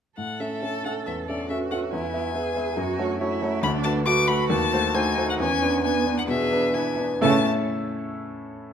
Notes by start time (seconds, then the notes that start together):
0.17 A2 A4 F#5
0.40 C#4 A4 E5
0.62 C#4 A4 E5 A5
0.84 C#4 A4 E5 F#5
1.06 E2 E5
1.28 C#4 A4 D5 E5
1.50 C#4 F#4 A4 E5
1.71 C#4 A4 E5 F#5
1.92 E2 E4 G#5
2.13 B3 B4 E5
2.34 B3 G#4 B4 E5
2.56 B3 B4 E5
2.77 F#2 F#4
2.98 A3 F#4 C#5
3.21 A3 E4 F#4 C#5
3.42 A3 F#4 C#5
3.63 D2 D4 B5
3.84 A3 F#4 B4 A5
4.06 A3 F#4 B4 D6
4.27 A3 F#4 B4 B5
4.50 D#2 A5
4.73 A3 F#4 C5
4.94 A3 D#4 F#4 C5 G#5
5.17 A3 F#4 C5
5.30 F#5
5.39 E2 C#4 G#5
5.62 B3 D4 B4
5.84 B3 D4 B4 G#5
6.06 B3 D4 B4
6.18 F#5
6.28 B2 G#4 E5
6.52 B3 D4 B4
6.74 B3 D4 E4 B4 G#5
6.98 B3 D4 B4
7.21 A2 C#3 A3 C#4 E4 A4 E5 A5